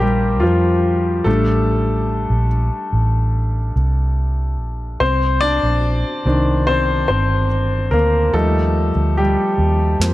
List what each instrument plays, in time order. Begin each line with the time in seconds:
Already playing: fingered electric bass A#1, grand piano A#3 C4 D4 A#4 C5
0.00 grand piano G3 G4
0.40 fingered electric bass F2, grand piano F3 F4
1.24 fingered electric bass A1, grand piano G3 A3 D4 A4
2.30 fingered electric bass A#1
2.93 fingered electric bass A1
3.76 fingered electric bass C2
4.59 fingered electric bass A#1
5.00 fingered electric bass C2, grand piano C4 C5
5.41 grand piano D4 D5
5.63 fingered electric bass A#1
6.25 fingered electric bass C2, grand piano D#3 C4 D4
6.67 grand piano C4 C5
7.08 fingered electric bass G1, grand piano C4 C5
7.91 fingered electric bass D2, grand piano A#3 A#4
8.34 fingered electric bass D#2, grand piano F3 G3 A3 D#4 A4
8.96 fingered electric bass D2
9.17 grand piano G3 G4
9.58 fingered electric bass D#2
10.00 fingered electric bass F2, grand piano F3 A#3 C4, snare